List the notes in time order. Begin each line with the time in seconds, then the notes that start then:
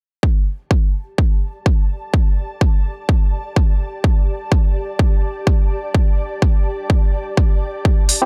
0.23 G4, kick
0.46 A5
0.71 kick
0.97 D5
1.18 kick
1.66 kick
2.14 kick
2.61 kick
3.09 kick
3.56 kick
4.04 kick
4.52 kick
4.99 kick
5.47 kick
5.94 kick
6.42 kick
6.90 kick
7.37 kick
7.85 G3, kick
8.09 open hi-hat
8.22 C4 E4 G4